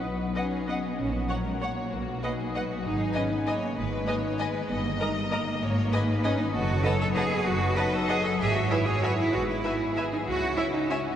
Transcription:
<<
  \new Staff \with { instrumentName = "Violin section" } { \time 3/4 \key gis \minor \tempo 4 = 193 r4 fis''4 fis''4 | r4 fis''4 fis''4 | r4 fis''4 fis''4 | r4 <dis'' gis''>4 <dis'' gis''>4 |
r4 <dis'' gis''>4 <dis'' gis''>4 | r4 <dis'' ais''>4 <dis'' ais''>4 | r4 <dis'' gis''>4 <dis'' gis''>4 | \key e \major r4 <fis'' a''>4 <fis'' a''>4 |
r4 <fis'' a''>4 <fis'' a''>4 | r4 <e'' gis''>4 <e'' gis''>4 | r4 <e'' gis''>4 <e'' gis''>4 | r4 <e'' gis''>4 <e'' gis''>4 | }
  \new Staff \with { instrumentName = "Viola section" } { \time 3/4 \key gis \minor r4 <b' dis''>4 <b' dis''>4 | r4 cis''4 cis''4 | r4 <b' dis''>4 <b' dis''>4 | r4 <b' dis''>4 <b' dis''>4 |
r4 <b' dis''>4 <b' dis''>4 | r4 <ais' dis''>4 <ais' dis''>4 | r4 <b' dis''>4 <b' dis''>4 | \key e \major r4 <b' dis''>4 <b' dis''>4 |
r4 <b' dis''>4 <b' dis''>4 | r4 <b' e''>4 <b' e''>4 | r4 <b' e''>4 <b' e''>4 | r4 <cis'' e''>4 <cis'' e''>4 | }
  \new Staff \with { instrumentName = "Violin section" } { \time 3/4 \key gis \minor b'4 gis'2 | fis'4 ais'4 cis''4 | fis'4 gis'4 fis'4 | gis'4 b'4 cis''4 |
b'4 cis''4 b'4 | dis''2. | cis''4 b'2 | \key e \major a'4 cis''4 b'4~ |
b'4 dis''2 | e''4 cis''2 | b'4 gis'2 | e'2 fis'4 | }
  \new Staff \with { instrumentName = "Harp" } { \time 3/4 \key gis \minor <b, fis b dis' fis' b' dis'' fis''>16 b16 fis16 dis'16 fis'16 b'16 dis''16 fis''16 dis''16 fis'16 b16 fis16 | ais,16 ais16 cis'16 ais16 fis'16 cis''16 fis'16 fis''16 cis''16 fis'16 cis'16 ais16 | b,16 fis16 b16 dis'16 fis'16 b'16 dis''16 fis''16 dis''16 fis'16 b16 fis16 | gis,16 dis16 b16 dis'16 gis'16 b'16 dis''16 gis''16 dis''16 gis'16 b16 dis16 |
gis,16 b16 dis16 dis'16 gis'16 b'16 dis''16 gis''16 dis''16 gis'16 b16 dis16 | g,16 g16 ais16 dis'16 ais'16 dis'16 dis''16 ais''8 ais'16 ais16 g16 | gis,16 dis16 b16 dis'16 gis'16 b'16 dis''16 gis''16 dis''16 gis'16 b16 dis16 | \key e \major fis,16 fis16 b16 dis'16 a'16 b'16 dis''16 a''16 dis''16 a'16 b16 fis16 |
fis,16 b16 fis16 dis'16 a'16 b'16 dis''16 a''16 dis''16 a'16 b16 fis16 | gis,16 gis16 b16 e'16 gis'16 b'16 e''16 gis''16 e''16 gis'16 b16 gis16 | gis,16 b16 gis16 e'16 gis'16 b'16 e''16 gis''16 e''16 gis'16 b16 gis16 | cis16 gis16 cis'16 e'16 gis'16 cis''16 e''16 gis''8 gis'16 cis'16 gis16 | }
  \new Staff \with { instrumentName = "Cello section" } { \time 3/4 \key gis \minor b4 cis'4 b4 | cis'8 b8 ais8 gis8 ais4~ | ais2~ ais8 b8 | dis'4 cis'8 b8 ais4 |
gis4 ais4 gis4 | b8 ais8 gis8 g8 ais4~ | ais2 cis'8 dis'8 | \key e \major fis'4 a'8 a'8 gis'4 |
fis'4 b'8 a'8 gis'8 a'8 | gis'8 fis'8 e'8 gis'8 fis'8 e'8 | fis'8 e'4. r8 dis'8 | fis'4 e'8 dis'8 cis'4 | }
  \new Staff \with { instrumentName = "Double bass section" } { \clef bass \time 3/4 \key gis \minor b,,4 r2 | ais,,4 r2 | b,,4 r2 | gis,,4 r2 |
gis,,4 r2 | g,,4 r2 | gis,,4 r2 | \key e \major fis,,4 r2 |
fis,,4 r2 | gis,,4 r2 | gis,,4 r2 | cis,4 r2 | }
>>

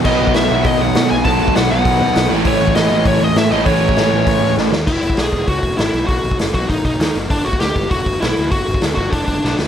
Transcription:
<<
  \new Staff \with { instrumentName = "Lead electric guitar" } { \time 4/4 \key b \mixolydian \tempo 4 = 198 dis''4 e''4 dis''8 fis''4 gis''8 | a''4 fis''8 fis''2 r8 | cis''4 dis''4 cis''8 dis''8 e''8 dis''8 | cis''2. r4 |
e'4 gis'4 fis'4 e'4 | fis'4 r8 fis'8 dis'8 dis'4 r8 | d'8 fis'8 g'4 fis'4 e'4 | fis'4 r8 fis'8 d'8 d'4 r8 | }
  \new Staff \with { instrumentName = "Distorted electric guitar" } { \clef bass \time 4/4 \key b \mixolydian <b, dis fis b dis'>4. <b, dis fis b dis'>2~ <b, dis fis b dis'>8 | <b, dis fis b dis'>4. <b, dis fis b dis'>2 <a, e a cis' e'>8~ | <a, e a cis' e'>4 <a, e a cis' e'>2~ <a, e a cis' e'>8 <a, e a cis' e'>8~ | <a, e a cis' e'>4 <a, e a cis' e'>2~ <a, e a cis' e'>8 r8 |
r1 | r1 | r1 | r1 | }
  \new Staff \with { instrumentName = "Overdriven electric guitar" } { \clef bass \time 4/4 \key b \mixolydian <b, fis b>1 | <b, fis b>2.~ <b, fis b>8 <a, e a>8~ | <a, e a>2.~ <a, e a>8 <a, e a>8~ | <a, e a>2.~ <a, e a>8 r8 |
r1 | r1 | r1 | r1 | }
  \new Staff \with { instrumentName = "Picked electric bass" } { \clef bass \time 4/4 \key b \mixolydian b,,8 b,,8 b,,8 b,,8 b,,8 b,,8 b,8 b,,8 | b,,8 b,,8 b,,8 b,,8 b,,8 b,8 b,,8 a,,8 | a,,8 a,,8 a,,8 a,,8 a,,8 a,,8 a,8 a,,8 | a,,8 a,,8 a,,8 a,,8 a,,8 a,8 a,,8 dis,8 |
e,,8 e,,8 b,,8 e,,8 cis,8 e,,8 gis,,8 b,,8 | b,,8 b,,8 fis,,8 b,,8 a,,8 b,,8 dis,8 fis,,8 | g,,8 g,,8 d,8 g,,8 e,,8 g,,8 b,,8 d,8 | g,,8 g,,8 d,8 g,,8 e,,8 g,,8 b,,8 d,8 | }
  \new DrumStaff \with { instrumentName = "Drums" } \drummode { \time 4/4 <cymc bd>8. bd16 <hho sn>4 <hho bd>4 <hho sn>4 | <hho bd>8. bd16 <hho sn>4 <hho bd>4 <hho sn>4 | <hho bd>8. bd16 <hho sn>4 <hho bd>4 <hho sn>4 | <hho bd>8. bd16 <hho sn>4 <hho bd>4 sn8 sn8 |
<cymc bd>8 hho16 bd16 <hho sn>8 <hho bd>8 <hho bd>8 <hho bd>8 <hho sn>8 hho8 | <hho bd>8 hho16 bd16 <hho sn>8 <hho bd>8 <hho bd>8 <hho bd>8 <hho sn>8 hho8 | <hho bd>8 hho16 bd16 <hho sn>8 <hho bd>8 <hho bd>8 <hho bd>8 <hho sn>8 hho8 | <hho bd>8 hho16 bd16 <hho sn>8 <hho bd>8 <hho bd>8 <hho bd>8 sn8 sn8 | }
>>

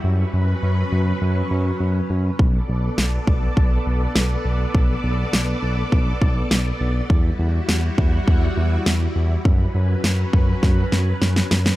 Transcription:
<<
  \new Staff \with { instrumentName = "String machine" } { \time 4/4 \key b \minor \tempo 4 = 102 <fis cis' b'>1 | <b a' d''>1~ | <b a' d''>1 | <g e' fis'>1 |
<fis cis' b'>1 | }
  \new Staff \with { instrumentName = "Analog synth bass" } { \clef bass \time 4/4 \key b \minor fis,8 fis,8 fis,8 fis,8 fis,8 fis,8 fis,8 fis,8 | b,,8 b,,8 b,,8 b,,8 b,,8 b,,8 b,,8 b,,8 | b,,8 b,,8 b,,8 b,,8 b,,8 b,,8 b,,8 b,,8 | e,8 e,8 e,8 e,8 e,8 e,8 e,8 e,8 |
fis,8 fis,8 fis,8 fis,8 fis,8 fis,8 fis,8 fis,8 | }
  \new DrumStaff \with { instrumentName = "Drums" } \drummode { \time 4/4 r4 r4 r4 r4 | bd4 sn8 bd8 bd4 sn4 | bd4 sn4 bd8 bd8 sn4 | bd4 sn8 bd8 bd4 sn4 |
bd4 sn8 bd8 <bd sn>8 sn8 sn16 sn16 sn16 sn16 | }
>>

